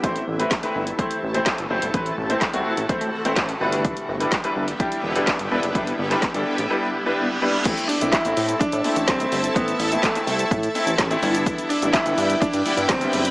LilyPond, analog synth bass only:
\new Staff \with { instrumentName = "Analog synth bass" } { \clef bass \time 4/4 \key a \dorian \tempo 4 = 126 a,,8 a,,8 r8 g,,8 r8 a,,8 r16 g,,16 fis,,16 g,,16 | a,,8 a,,8 r16 c,16 r16 a,,16 a,16 a,16 r16 a,,16 a,,8 g,,8~ | g,,8 g,,8 r8 g,,8 r8 e,,8 r16 g,,16 e,,16 fis,,16 | g,,8 g,,8 r16 g,,16 r16 a,,16 r2 |
a,,16 r8 c,16 r16 a,,16 a,8 a,16 a,16 r16 a,,16 c,8 g,,8 | a,,8 a,,8 r8 c,8 a,8 r16 a,,16 a,,8 g,,8~ | g,,16 r8 a,,16 r16 g,,16 g,8 g,16 g,16 r16 g,16 g,,8 fis,,8 | }